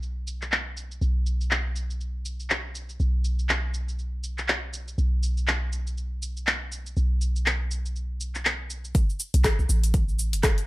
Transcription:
0.00 0.99 B1 medium
0.00 shaker soft
0.27 shaker medium
0.42 clap soft
0.42 shaker medium
0.52 clap medium
0.52 shaker soft
0.77 shaker medium
0.91 shaker medium
1.01 2.98 B1 medium
1.01 shaker soft
1.26 shaker medium
1.41 shaker soft
1.51 clap loud
1.51 shaker soft
1.76 shaker medium
1.90 shaker soft
2.01 shaker soft
2.25 shaker medium
2.40 shaker soft
2.50 clap loud
2.50 shaker soft
2.75 shaker medium
2.89 shaker soft
3.00 4.96 B1 medium
3.00 shaker soft
3.24 shaker medium
3.39 shaker soft
3.49 clap loud
3.49 shaker soft
3.74 shaker medium
3.89 shaker soft
3.99 shaker soft
4.24 shaker medium
4.38 clap soft
4.38 shaker soft
4.48 clap medium
4.48 shaker soft
4.73 shaker medium
4.88 shaker soft
4.98 6.94 B1 medium
4.98 shaker soft
5.23 shaker medium
5.37 shaker soft
5.48 clap loud
5.48 shaker soft
5.73 shaker medium
5.87 shaker soft
5.98 shaker soft
6.22 shaker medium
6.37 shaker soft
6.47 clap medium
6.47 shaker soft
6.72 shaker medium
6.86 shaker soft
6.97 8.93 B1 medium
6.97 shaker soft
7.21 shaker medium
7.36 shaker soft
7.46 clap medium
7.46 shaker soft
7.71 shaker medium
7.86 shaker soft
7.96 shaker soft
8.20 shaker medium
8.35 clap soft
8.35 shaker soft
8.45 clap medium
8.45 shaker soft
8.70 shaker medium
8.85 shaker soft
8.95 kick loud
8.95 closed hi-hat medium
8.95 shaker medium
9.10 shaker soft
9.20 shaker medium
9.34 9.48 B1 loud
9.34 closed hi-hat soft
9.34 shaker soft
9.44 kick loud
9.44 cross-stick loud
9.44 clap loud
9.44 closed hi-hat medium
9.44 shaker medium
9.59 9.65 B1 medium
9.59 shaker soft
9.69 10.35 A1 medium
9.69 shaker medium
9.84 closed hi-hat soft
9.84 shaker soft
9.94 kick loud
9.94 closed hi-hat medium
9.94 shaker medium
10.09 shaker soft
10.19 shaker loud
10.33 10.62 F#1 loud
10.33 closed hi-hat soft
10.33 shaker soft
10.43 kick loud
10.43 cross-stick loud
10.43 clap loud
10.43 closed hi-hat medium
10.43 shaker medium
10.58 closed hi-hat soft
10.58 shaker soft

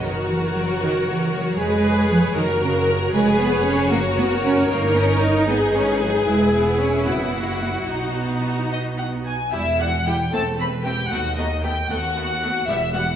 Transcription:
0.03 1.55 F#1 medium
0.03 0.29 D#3 medium
0.03 1.55 F#4 medium
0.03 1.56 F#4 medium
0.03 1.55 A#4 medium
0.03 3.10 C#5 soft
0.29 0.55 E3 medium
0.55 0.81 F#3 medium
0.81 0.89 D#3 medium
1.08 1.33 E3 medium
1.33 1.59 F#3 medium
1.58 2.35 F1 medium
1.58 2.09 G#3 medium
1.58 2.32 G#4 medium
1.58 2.35 G#4 medium
1.58 2.32 B4 medium
2.10 2.18 F3 medium
2.35 3.12 F#1 medium
2.35 2.44 D#3 medium
2.35 3.10 F#4 medium
2.35 3.10 A#4 medium
2.35 3.14 A#4 medium
2.61 2.87 C#3 medium
3.13 3.90 F1 medium
3.13 3.38 G#3 medium
3.13 3.87 G#4 medium
3.13 3.90 G#4 medium
3.13 3.87 B4 medium
3.13 5.44 C#5 medium
3.39 3.65 B3 medium
3.65 3.91 C#4 medium
3.90 4.70 F#1 medium
3.90 4.00 A#3 medium
3.90 4.69 F#4 medium
3.90 4.65 F#4 medium
3.90 5.44 A#4 medium
4.17 4.25 B3 medium
4.44 4.69 C#4 medium
4.69 5.46 G1 medium
4.69 4.95 A#3 medium
4.69 6.24 D#4 medium
4.69 5.46 A#4 medium
4.96 5.22 C#4 medium
5.22 5.48 D#4 medium
5.48 6.27 G#1 medium
5.48 5.56 B3 medium
5.48 7.04 G#4 medium
5.48 7.03 G#4 medium
5.48 7.03 B4 medium
5.75 6.00 C#4 medium
6.01 6.09 F#3 medium
6.27 7.06 E1 medium
6.27 6.53 G#3 medium
6.27 7.86 E4 medium
6.54 6.80 B3 medium
6.81 7.07 C#4 medium
7.07 7.89 F#1 soft
7.07 7.35 B3 medium
7.07 7.87 E4 soft
7.07 9.29 F#4 medium
7.07 8.62 F#5 medium
7.35 7.61 A#3 medium
7.62 7.70 A#3 medium
7.89 9.30 B1 soft
7.89 9.24 B3 medium
7.89 9.13 D#4 soft
7.89 9.29 D#4 soft
8.72 8.80 D#5 soft
8.98 9.06 F#5 soft
9.27 9.53 G#5 soft
9.53 10.23 E1 soft
9.53 10.23 E2 soft
9.53 9.61 G3 soft
9.53 9.78 E4 soft
9.53 9.61 E4 soft
9.53 9.78 E5 medium
9.80 9.88 G3 soft
9.80 9.88 E4 soft
9.80 9.88 F#4 soft
9.80 10.07 F#5 medium
10.05 10.15 G3 soft
10.05 10.15 E4 soft
10.05 10.13 G4 soft
10.05 10.33 G5 soft
10.32 11.01 E1 soft
10.32 11.02 E2 soft
10.32 10.41 A3 soft
10.32 10.41 C4 soft
10.32 10.58 A4 soft
10.32 10.41 A5 medium
10.58 10.67 A3 soft
10.58 10.67 C4 soft
10.58 10.84 B4 soft
10.58 10.68 B5 medium
10.84 10.93 A3 soft
10.84 10.93 C4 soft
10.84 11.10 G4 soft
10.84 11.10 G5 medium
11.10 11.80 D#2 soft
11.10 11.81 D#2 soft
11.10 11.19 A3 soft
11.10 11.19 B3 soft
11.10 11.36 F#4 soft
11.10 11.37 F#5 medium
11.37 11.46 A3 soft
11.37 11.46 B3 soft
11.37 11.45 D#4 soft
11.37 11.63 D#5 soft
11.63 11.72 A3 soft
11.63 11.72 B3 soft
11.63 11.71 G4 soft
11.63 11.89 G5 medium
11.90 12.58 D#2 soft
11.90 12.59 D#2 soft
11.90 11.99 A3 soft
11.90 11.98 B3 soft
11.90 12.66 F#4 soft
11.90 12.68 F#5 medium
12.16 12.24 A3 soft
12.16 12.25 B3 soft
12.43 12.51 A3 soft
12.43 12.51 B3 soft
12.68 13.16 E1 medium
12.68 13.16 E2 soft
12.68 12.77 G3 soft
12.68 12.77 B3 soft
12.68 12.76 E4 soft
12.68 12.94 E5 medium
12.94 13.02 G3 soft
12.94 13.02 B3 soft
12.94 13.02 F#4 soft
12.94 13.16 F#5 medium

